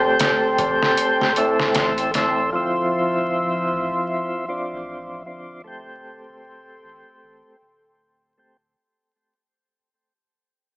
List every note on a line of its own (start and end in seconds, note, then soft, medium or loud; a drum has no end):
0.00 1.32 A3 medium
0.00 1.33 C4 medium
0.00 1.34 G4 medium
0.00 2.51 A4 medium
0.00 2.51 G5 medium
0.00 5.62 C6 medium
0.04 0.56 D1 loud
0.04 tabla na soft
0.19 snare loud
0.19 closed hi-hat medium
0.19 tabla na medium
0.58 0.79 A1 medium
0.58 kick medium
0.58 closed hi-hat medium
0.58 tabla na medium
0.83 snare medium
0.83 tabla na soft
0.97 closed hi-hat medium
0.97 tabla na medium
1.21 snare soft
1.21 tabla na soft
1.36 2.11 A3 medium
1.36 2.11 C4 medium
1.36 2.11 E4 medium
1.36 closed hi-hat medium
1.36 tabla na medium
1.60 snare medium
1.60 tabla na soft
1.75 2.51 A1 loud
1.75 snare loud
1.75 closed hi-hat medium
1.75 tabla na medium
1.98 closed hi-hat soft
1.98 tabla na soft
2.14 2.49 A3 medium
2.14 2.50 C4 medium
2.14 2.50 E4 medium
2.14 snare soft
2.14 closed hi-hat medium
2.14 tabla na medium
2.38 tabla na soft
2.53 3.12 D1 loud
2.53 4.44 F3 medium
2.53 5.63 F3 medium
2.53 4.45 C4 medium
2.53 4.46 E4 medium
2.53 5.63 E5 medium
3.16 3.68 D1 loud
3.71 3.91 A1 loud
4.48 5.22 F3 medium
4.48 5.23 C4 medium
4.48 5.23 D4 medium
4.72 5.24 A1 medium
5.26 6.24 D1 medium
5.26 5.61 F3 medium
5.26 5.62 C4 medium
5.26 5.62 D4 medium
5.64 7.56 A3 medium
5.64 7.57 C4 medium
5.64 7.57 G4 medium
5.64 8.75 A4 medium
5.64 8.75 G5 medium
5.64 8.75 C6 medium
6.29 6.80 D1 medium
6.83 7.03 A1 medium
7.23 7.42 A1 medium
7.61 8.74 D1 loud
8.38 8.56 A3 medium
8.38 8.57 C4 medium
8.38 8.57 G4 medium